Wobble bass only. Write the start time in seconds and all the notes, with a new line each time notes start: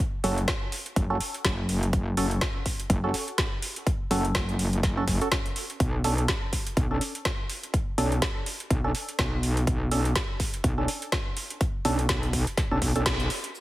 0.24 F#1
0.96 F#1
1.45 F#1
1.93 F#1
2.17 F#1
2.90 F#1
4.11 F#1
4.35 F#1
4.83 F#1
5.80 B1
6.04 B1
6.77 B1
7.98 B1
8.70 B1
9.19 B1
9.67 B1
9.92 B1
10.64 B1
11.85 B1
12.09 B1
12.71 B1
12.82 B1
12.96 B1